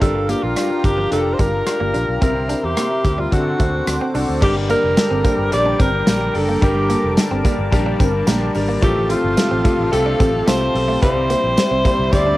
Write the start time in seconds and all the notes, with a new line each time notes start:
Already playing: F5
0.01 G1 G2 G3 D4 F4 G4 A4 A#4 A#5, kick, closed hi-hat, tambourine
0.15 muted clean electric guitar stroke
0.29 A#3 D4 F4 G4 A#4, closed hi-hat, tambourine
0.43 A#1 F4
0.56 G3 D4 F4 G4 A#4, cross-stick, closed hi-hat, tambourine
0.70 muted clean electric guitar stroke
0.84 G1 D4 F4 G4 A#4, kick, closed hi-hat, tambourine
0.98 F3
1.11 F1 D4 F4 G4 A4 A#4, closed hi-hat, tambourine
1.33 C5
1.39 G1 G3 D4 F4 G4 A#4, kick, closed hi-hat, tambourine
1.66 D4 F4 G4 A#4, muted clean electric guitar stroke, cross-stick, closed hi-hat, tambourine
1.80 G1 A#3
1.94 A#1 D4 F4 G4 A#4, closed hi-hat, tambourine
2.09 B1
2.21 C2 C3 C4 E4 G4 A#4 E5 C6, kick, closed hi-hat, tambourine
2.36 muted clean electric guitar stroke
2.49 C4 D4 E4 G4 C5, closed hi-hat, tambourine
2.63 E2 G4
2.76 A#3 C4 E4 G4 A#4, cross-stick, closed hi-hat, tambourine
2.91 muted clean electric guitar stroke
3.04 D2 C4 E4 G4 A#4, kick, closed hi-hat, tambourine
3.18 G3 F4
3.31 D3 C4 D4 F#4 A4 C5 F#5 D6, kick, closed hi-hat, tambourine
3.58 D2 A3 C4 D4 F#4 C5, kick, closed hi-hat, tambourine
3.86 D2 C4 D4 F#4 A4, muted clean electric guitar stroke, cross-stick, closed hi-hat, tambourine
4.01 C4
4.14 C2 C4 D4 F#4 A4, open hi-hat, tambourine
4.29 D2
4.41 G1 G2 D3 G3 A#3 D4 G4 A#4 G5 D6, kick, crash, tambourine
4.45 G3
4.56 muted clean electric guitar stroke
4.69 G3 A#3 D4 G4 A#4, closed hi-hat, tambourine
4.84 F1
4.96 G3 A#3 D4 G4 A4, muted clean electric guitar stroke, snare, closed hi-hat, tambourine
5.11 G1 C4
5.24 G3 A#3 D4 G4 C5, kick, closed hi-hat, tambourine
5.39 G1
5.51 A#1 G2 D3 G3 A#3 D4 G4 A#4 D5, muted clean electric guitar stroke, closed hi-hat, tambourine
5.66 D4
5.79 G1 G3 A#3 C4 D4 G4 A#4, kick, closed hi-hat, tambourine
6.06 A#1 G2 D3 G3 A#3 D4 G4 A#4, snare, closed hi-hat, tambourine
6.21 muted clean electric guitar stroke
6.34 F#1 G3 A#3 D4 G4 A4 A#4, open hi-hat
6.49 A#3
6.61 G1 G2 D3 G3 A#3 D4 G4 A#4 A5, kick, closed hi-hat
6.66 G3
6.76 muted clean electric guitar stroke
6.89 G3 A#3 D4 G4 A4, closed hi-hat, tambourine
7.04 F1
7.17 G3 A#3 D4 G4 A#4, muted clean electric guitar stroke, snare, closed hi-hat, tambourine
7.31 G1 C4
7.44 G3 A#3 D4 G4 A#4, kick, closed hi-hat, tambourine
7.59 G1
7.71 A#1 G2 D3 G3 A#3 D4 G4 A#4, muted clean electric guitar stroke, kick, closed hi-hat, tambourine
7.86 D4
7.99 G1 G3 A#3 C4 D4 G4 A#4, kick, closed hi-hat, tambourine
8.27 A#1 G2 D3 G3 A#3 D4 G4 A#4, snare, closed hi-hat, tambourine
8.41 muted clean electric guitar stroke
8.54 G#1 G3 A#3 D4 G4 A#4, open hi-hat, tambourine
8.69 A#3
8.82 A1 F2 A2 C3 F3 A3 C4 F4 G4 A4 F5, kick, closed hi-hat, tambourine
8.96 muted clean electric guitar stroke
9.09 A3 C4 F4 G4 A4, closed hi-hat, tambourine
9.24 G1
9.37 A3 C4 F4 G4 A4, muted clean electric guitar stroke, snare, closed hi-hat, tambourine
9.51 A1 C4
9.64 C3 F3 A3 C4 F4 G4 A4, kick, closed hi-hat, tambourine
9.79 A1
9.92 C2 F2 C3 F3 A3 C4 F4 G4 A4, muted clean electric guitar stroke, closed hi-hat, tambourine
10.06 D4
10.19 A1 A3 C4 F4 G4 A4, kick, closed hi-hat, tambourine
10.46 C2 F2 C3 F3 A3 C4 F4 G4 A4 C5, snare, closed hi-hat, tambourine
10.61 muted clean electric guitar stroke
10.75 B1 A3 C4 F4 G4 A4, open hi-hat
10.88 A3
11.00 C2 C3 G3 C4 E4 G4 C5 E5 C6, kick, closed hi-hat, tambourine
11.05 C4
11.16 muted clean electric guitar stroke
11.30 G3 A#3 C4 E4 G4 C5, closed hi-hat, tambourine
11.44 A#1
11.57 G3 C4 E4 G4 C5, muted clean electric guitar stroke, snare, closed hi-hat, tambourine
11.71 C2 C4
11.85 G3 A#3 C4 E4 G4 C5, kick, closed hi-hat, tambourine
11.99 C2
12.12 D2 C3 G3 C4 E4 G4 C5 D5, muted clean electric guitar stroke, kick, closed hi-hat, tambourine
12.27 D4